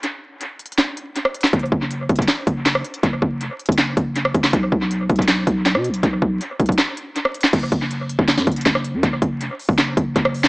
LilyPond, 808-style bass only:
\new Staff \with { instrumentName = "808-style bass" } { \clef bass \time 4/4 \key b \lydian \tempo 4 = 160 r1 | fis,,8 fis,,4 fis,,8 r8 fis,,4 r8 | fis,,8 fis,,8 eis,,16 r8 fis,,8. fis,,4 fis,,8 | b,,8 b,,4 b,,4 b,,8. b,16. b,,16. |
b,,8 b,,8 r8 b,,8 r2 | fis,,8 fis,,4~ fis,,16 fis,,8 fis,16 fis,,8 fis,,8. fis,16 | fis,,8 fis,,8 eis,,16 r8 fis,,8. fis,,8 fis,,4 | }